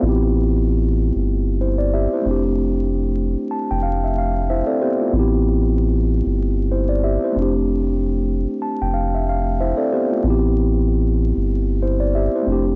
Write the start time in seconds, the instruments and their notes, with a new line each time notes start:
Already playing: tine electric piano A3 F4
0.00 sub bass A1, tine electric piano B3 C4
0.05 tine electric piano E4 G4
1.16 sub bass G1
1.61 tine electric piano E4 C5
1.78 tine electric piano D5
1.94 tine electric piano G4 E5
2.13 tine electric piano E4 C5
2.22 tine electric piano A3 C4
2.26 sub bass F1, tine electric piano D4
2.31 tine electric piano G4
3.51 tine electric piano A5
3.71 sub bass F1, tine electric piano G5
3.83 tine electric piano F5
4.04 tine electric piano E5
4.18 tine electric piano F5
4.50 tine electric piano E4 C5 E5
4.67 tine electric piano C4 A4 D5
4.81 tine electric piano B3 G4 C5
4.99 tine electric piano A3 F4
5.10 sub bass A1, tine electric piano B3 C4
5.16 tine electric piano E4 G4
6.26 sub bass G1
6.72 tine electric piano E4 C5
6.89 tine electric piano D5
7.04 tine electric piano G4 E5
7.24 tine electric piano E4 C5
7.32 tine electric piano A3 C4
7.36 sub bass F1, tine electric piano D4
7.42 tine electric piano G4
8.62 tine electric piano A5
8.82 sub bass F1, tine electric piano G5
8.94 tine electric piano F5
9.15 tine electric piano E5
9.29 tine electric piano F5
9.60 tine electric piano E4 C5 E5
9.77 tine electric piano C4 A4 D5
9.92 tine electric piano B3 G4 C5
10.11 tine electric piano A3 F4
10.21 sub bass A1, tine electric piano B3 C4
10.27 tine electric piano E4 G4
11.37 sub bass G1
11.83 tine electric piano E4 C5
12.00 tine electric piano D5
12.15 tine electric piano G4 E5
12.35 tine electric piano E4 C5
12.43 tine electric piano A3 C4
12.47 sub bass F1, tine electric piano D4
12.52 tine electric piano G4